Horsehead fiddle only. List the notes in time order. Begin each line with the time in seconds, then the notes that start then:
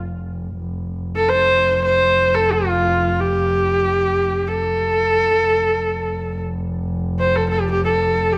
1.16 A4
1.29 C5
1.85 C5
2.35 A4
2.52 F4
3.20 G4
4.48 A4
7.19 C5
7.36 A4
7.49 A4
7.60 G4
7.71 G4
7.85 A4
8.33 G4